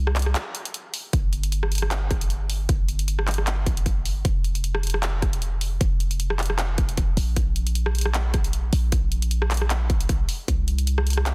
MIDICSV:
0, 0, Header, 1, 3, 480
1, 0, Start_track
1, 0, Tempo, 389610
1, 1395, Time_signature, 4, 2, 24, 8
1, 13977, End_track
2, 0, Start_track
2, 0, Title_t, "808-style bass"
2, 0, Program_c, 0, 38
2, 0, Note_on_c, 0, 36, 92
2, 436, Note_off_c, 0, 36, 0
2, 1395, Note_on_c, 0, 31, 91
2, 3293, Note_off_c, 0, 31, 0
2, 3314, Note_on_c, 0, 31, 93
2, 5213, Note_off_c, 0, 31, 0
2, 5234, Note_on_c, 0, 29, 90
2, 7133, Note_off_c, 0, 29, 0
2, 7155, Note_on_c, 0, 29, 91
2, 8813, Note_off_c, 0, 29, 0
2, 8834, Note_on_c, 0, 34, 90
2, 10732, Note_off_c, 0, 34, 0
2, 10752, Note_on_c, 0, 34, 94
2, 12651, Note_off_c, 0, 34, 0
2, 12913, Note_on_c, 0, 36, 92
2, 13977, Note_off_c, 0, 36, 0
2, 13977, End_track
3, 0, Start_track
3, 0, Title_t, "Drums"
3, 87, Note_on_c, 9, 37, 81
3, 194, Note_on_c, 9, 39, 62
3, 194, Note_on_c, 9, 42, 52
3, 210, Note_off_c, 9, 37, 0
3, 238, Note_off_c, 9, 42, 0
3, 238, Note_on_c, 9, 42, 72
3, 274, Note_off_c, 9, 42, 0
3, 274, Note_on_c, 9, 42, 84
3, 318, Note_off_c, 9, 39, 0
3, 324, Note_on_c, 9, 37, 77
3, 397, Note_off_c, 9, 42, 0
3, 433, Note_on_c, 9, 39, 120
3, 433, Note_on_c, 9, 42, 90
3, 447, Note_off_c, 9, 37, 0
3, 556, Note_off_c, 9, 39, 0
3, 556, Note_off_c, 9, 42, 0
3, 673, Note_on_c, 9, 42, 70
3, 796, Note_off_c, 9, 42, 0
3, 806, Note_on_c, 9, 42, 73
3, 915, Note_off_c, 9, 42, 0
3, 915, Note_on_c, 9, 42, 83
3, 1038, Note_off_c, 9, 42, 0
3, 1154, Note_on_c, 9, 46, 103
3, 1277, Note_off_c, 9, 46, 0
3, 1395, Note_on_c, 9, 36, 123
3, 1395, Note_on_c, 9, 42, 87
3, 1518, Note_off_c, 9, 36, 0
3, 1518, Note_off_c, 9, 42, 0
3, 1635, Note_on_c, 9, 42, 72
3, 1758, Note_off_c, 9, 42, 0
3, 1767, Note_on_c, 9, 42, 70
3, 1875, Note_off_c, 9, 42, 0
3, 1875, Note_on_c, 9, 42, 82
3, 1998, Note_off_c, 9, 42, 0
3, 2007, Note_on_c, 9, 37, 81
3, 2115, Note_on_c, 9, 42, 54
3, 2130, Note_off_c, 9, 37, 0
3, 2158, Note_off_c, 9, 42, 0
3, 2158, Note_on_c, 9, 42, 67
3, 2193, Note_off_c, 9, 42, 0
3, 2193, Note_on_c, 9, 42, 84
3, 2246, Note_on_c, 9, 37, 78
3, 2317, Note_off_c, 9, 42, 0
3, 2354, Note_on_c, 9, 39, 123
3, 2354, Note_on_c, 9, 42, 83
3, 2370, Note_off_c, 9, 37, 0
3, 2478, Note_off_c, 9, 39, 0
3, 2478, Note_off_c, 9, 42, 0
3, 2595, Note_on_c, 9, 36, 110
3, 2595, Note_on_c, 9, 37, 62
3, 2595, Note_on_c, 9, 42, 68
3, 2718, Note_off_c, 9, 36, 0
3, 2718, Note_off_c, 9, 37, 0
3, 2718, Note_off_c, 9, 42, 0
3, 2727, Note_on_c, 9, 42, 72
3, 2835, Note_off_c, 9, 42, 0
3, 2835, Note_on_c, 9, 42, 85
3, 2958, Note_off_c, 9, 42, 0
3, 3075, Note_on_c, 9, 46, 96
3, 3198, Note_off_c, 9, 46, 0
3, 3315, Note_on_c, 9, 36, 125
3, 3315, Note_on_c, 9, 42, 86
3, 3438, Note_off_c, 9, 36, 0
3, 3438, Note_off_c, 9, 42, 0
3, 3555, Note_on_c, 9, 42, 69
3, 3678, Note_off_c, 9, 42, 0
3, 3685, Note_on_c, 9, 42, 69
3, 3794, Note_off_c, 9, 42, 0
3, 3794, Note_on_c, 9, 42, 84
3, 3917, Note_off_c, 9, 42, 0
3, 3926, Note_on_c, 9, 37, 78
3, 4034, Note_on_c, 9, 39, 65
3, 4034, Note_on_c, 9, 42, 52
3, 4049, Note_off_c, 9, 37, 0
3, 4077, Note_off_c, 9, 42, 0
3, 4077, Note_on_c, 9, 42, 63
3, 4114, Note_off_c, 9, 42, 0
3, 4114, Note_on_c, 9, 42, 84
3, 4158, Note_off_c, 9, 39, 0
3, 4166, Note_on_c, 9, 37, 78
3, 4237, Note_off_c, 9, 42, 0
3, 4274, Note_on_c, 9, 39, 126
3, 4274, Note_on_c, 9, 42, 86
3, 4289, Note_off_c, 9, 37, 0
3, 4397, Note_off_c, 9, 39, 0
3, 4397, Note_off_c, 9, 42, 0
3, 4515, Note_on_c, 9, 36, 108
3, 4516, Note_on_c, 9, 42, 68
3, 4638, Note_off_c, 9, 36, 0
3, 4639, Note_off_c, 9, 42, 0
3, 4647, Note_on_c, 9, 42, 69
3, 4755, Note_off_c, 9, 42, 0
3, 4755, Note_on_c, 9, 36, 116
3, 4755, Note_on_c, 9, 42, 81
3, 4878, Note_off_c, 9, 36, 0
3, 4878, Note_off_c, 9, 42, 0
3, 4996, Note_on_c, 9, 46, 97
3, 5119, Note_off_c, 9, 46, 0
3, 5235, Note_on_c, 9, 36, 126
3, 5235, Note_on_c, 9, 42, 81
3, 5358, Note_off_c, 9, 36, 0
3, 5358, Note_off_c, 9, 42, 0
3, 5476, Note_on_c, 9, 42, 66
3, 5599, Note_off_c, 9, 42, 0
3, 5608, Note_on_c, 9, 42, 64
3, 5716, Note_off_c, 9, 42, 0
3, 5716, Note_on_c, 9, 42, 76
3, 5839, Note_off_c, 9, 42, 0
3, 5847, Note_on_c, 9, 37, 86
3, 5954, Note_on_c, 9, 42, 48
3, 5970, Note_off_c, 9, 37, 0
3, 5999, Note_off_c, 9, 42, 0
3, 5999, Note_on_c, 9, 42, 64
3, 6034, Note_off_c, 9, 42, 0
3, 6034, Note_on_c, 9, 42, 78
3, 6087, Note_on_c, 9, 37, 83
3, 6158, Note_off_c, 9, 42, 0
3, 6195, Note_on_c, 9, 39, 125
3, 6195, Note_on_c, 9, 42, 80
3, 6210, Note_off_c, 9, 37, 0
3, 6318, Note_off_c, 9, 39, 0
3, 6318, Note_off_c, 9, 42, 0
3, 6435, Note_on_c, 9, 36, 111
3, 6436, Note_on_c, 9, 37, 63
3, 6436, Note_on_c, 9, 42, 63
3, 6558, Note_off_c, 9, 36, 0
3, 6559, Note_off_c, 9, 37, 0
3, 6559, Note_off_c, 9, 42, 0
3, 6569, Note_on_c, 9, 42, 69
3, 6675, Note_off_c, 9, 42, 0
3, 6675, Note_on_c, 9, 42, 76
3, 6799, Note_off_c, 9, 42, 0
3, 6914, Note_on_c, 9, 46, 93
3, 7037, Note_off_c, 9, 46, 0
3, 7155, Note_on_c, 9, 36, 124
3, 7155, Note_on_c, 9, 42, 82
3, 7278, Note_off_c, 9, 36, 0
3, 7278, Note_off_c, 9, 42, 0
3, 7395, Note_on_c, 9, 42, 66
3, 7518, Note_off_c, 9, 42, 0
3, 7526, Note_on_c, 9, 42, 63
3, 7635, Note_off_c, 9, 42, 0
3, 7635, Note_on_c, 9, 42, 78
3, 7758, Note_off_c, 9, 42, 0
3, 7765, Note_on_c, 9, 37, 87
3, 7873, Note_on_c, 9, 39, 61
3, 7873, Note_on_c, 9, 42, 48
3, 7888, Note_off_c, 9, 37, 0
3, 7917, Note_off_c, 9, 42, 0
3, 7917, Note_on_c, 9, 42, 61
3, 7954, Note_off_c, 9, 42, 0
3, 7954, Note_on_c, 9, 42, 76
3, 7997, Note_off_c, 9, 39, 0
3, 8005, Note_on_c, 9, 37, 83
3, 8077, Note_off_c, 9, 42, 0
3, 8113, Note_on_c, 9, 39, 127
3, 8113, Note_on_c, 9, 42, 79
3, 8128, Note_off_c, 9, 37, 0
3, 8236, Note_off_c, 9, 39, 0
3, 8236, Note_off_c, 9, 42, 0
3, 8353, Note_on_c, 9, 42, 64
3, 8354, Note_on_c, 9, 36, 109
3, 8476, Note_off_c, 9, 42, 0
3, 8477, Note_off_c, 9, 36, 0
3, 8485, Note_on_c, 9, 42, 65
3, 8592, Note_off_c, 9, 42, 0
3, 8592, Note_on_c, 9, 42, 78
3, 8594, Note_on_c, 9, 36, 112
3, 8716, Note_off_c, 9, 42, 0
3, 8717, Note_off_c, 9, 36, 0
3, 8834, Note_on_c, 9, 46, 94
3, 8957, Note_off_c, 9, 46, 0
3, 9073, Note_on_c, 9, 42, 79
3, 9074, Note_on_c, 9, 36, 121
3, 9196, Note_off_c, 9, 42, 0
3, 9197, Note_off_c, 9, 36, 0
3, 9313, Note_on_c, 9, 42, 69
3, 9436, Note_off_c, 9, 42, 0
3, 9445, Note_on_c, 9, 42, 65
3, 9552, Note_off_c, 9, 42, 0
3, 9552, Note_on_c, 9, 42, 80
3, 9676, Note_off_c, 9, 42, 0
3, 9684, Note_on_c, 9, 37, 89
3, 9794, Note_on_c, 9, 42, 46
3, 9808, Note_off_c, 9, 37, 0
3, 9837, Note_off_c, 9, 42, 0
3, 9837, Note_on_c, 9, 42, 65
3, 9873, Note_off_c, 9, 42, 0
3, 9873, Note_on_c, 9, 42, 79
3, 9924, Note_on_c, 9, 37, 89
3, 9996, Note_off_c, 9, 42, 0
3, 10033, Note_on_c, 9, 39, 123
3, 10033, Note_on_c, 9, 42, 77
3, 10047, Note_off_c, 9, 37, 0
3, 10156, Note_off_c, 9, 39, 0
3, 10156, Note_off_c, 9, 42, 0
3, 10271, Note_on_c, 9, 37, 66
3, 10271, Note_on_c, 9, 42, 64
3, 10273, Note_on_c, 9, 36, 103
3, 10395, Note_off_c, 9, 37, 0
3, 10395, Note_off_c, 9, 42, 0
3, 10397, Note_off_c, 9, 36, 0
3, 10403, Note_on_c, 9, 42, 65
3, 10512, Note_off_c, 9, 42, 0
3, 10512, Note_on_c, 9, 42, 75
3, 10635, Note_off_c, 9, 42, 0
3, 10751, Note_on_c, 9, 46, 96
3, 10874, Note_off_c, 9, 46, 0
3, 10992, Note_on_c, 9, 42, 83
3, 10993, Note_on_c, 9, 36, 118
3, 11115, Note_off_c, 9, 42, 0
3, 11117, Note_off_c, 9, 36, 0
3, 11232, Note_on_c, 9, 42, 68
3, 11355, Note_off_c, 9, 42, 0
3, 11363, Note_on_c, 9, 42, 67
3, 11471, Note_off_c, 9, 42, 0
3, 11471, Note_on_c, 9, 42, 77
3, 11594, Note_off_c, 9, 42, 0
3, 11603, Note_on_c, 9, 37, 86
3, 11713, Note_on_c, 9, 39, 61
3, 11713, Note_on_c, 9, 42, 49
3, 11726, Note_off_c, 9, 37, 0
3, 11756, Note_off_c, 9, 42, 0
3, 11756, Note_on_c, 9, 42, 68
3, 11793, Note_off_c, 9, 42, 0
3, 11793, Note_on_c, 9, 42, 80
3, 11836, Note_off_c, 9, 39, 0
3, 11846, Note_on_c, 9, 37, 85
3, 11916, Note_off_c, 9, 42, 0
3, 11953, Note_on_c, 9, 39, 120
3, 11953, Note_on_c, 9, 42, 83
3, 11969, Note_off_c, 9, 37, 0
3, 12077, Note_off_c, 9, 39, 0
3, 12077, Note_off_c, 9, 42, 0
3, 12194, Note_on_c, 9, 36, 102
3, 12194, Note_on_c, 9, 42, 64
3, 12317, Note_off_c, 9, 36, 0
3, 12317, Note_off_c, 9, 42, 0
3, 12327, Note_on_c, 9, 42, 69
3, 12434, Note_off_c, 9, 42, 0
3, 12434, Note_on_c, 9, 36, 112
3, 12434, Note_on_c, 9, 42, 77
3, 12557, Note_off_c, 9, 36, 0
3, 12557, Note_off_c, 9, 42, 0
3, 12673, Note_on_c, 9, 46, 101
3, 12796, Note_off_c, 9, 46, 0
3, 12914, Note_on_c, 9, 36, 121
3, 12914, Note_on_c, 9, 42, 85
3, 13037, Note_off_c, 9, 36, 0
3, 13038, Note_off_c, 9, 42, 0
3, 13155, Note_on_c, 9, 42, 73
3, 13278, Note_off_c, 9, 42, 0
3, 13287, Note_on_c, 9, 42, 69
3, 13394, Note_off_c, 9, 42, 0
3, 13394, Note_on_c, 9, 42, 88
3, 13517, Note_off_c, 9, 42, 0
3, 13526, Note_on_c, 9, 37, 91
3, 13634, Note_on_c, 9, 42, 52
3, 13649, Note_off_c, 9, 37, 0
3, 13680, Note_off_c, 9, 42, 0
3, 13680, Note_on_c, 9, 42, 66
3, 13714, Note_off_c, 9, 42, 0
3, 13714, Note_on_c, 9, 42, 86
3, 13767, Note_on_c, 9, 37, 86
3, 13838, Note_off_c, 9, 42, 0
3, 13874, Note_on_c, 9, 39, 112
3, 13874, Note_on_c, 9, 42, 89
3, 13890, Note_off_c, 9, 37, 0
3, 13977, Note_off_c, 9, 39, 0
3, 13977, Note_off_c, 9, 42, 0
3, 13977, End_track
0, 0, End_of_file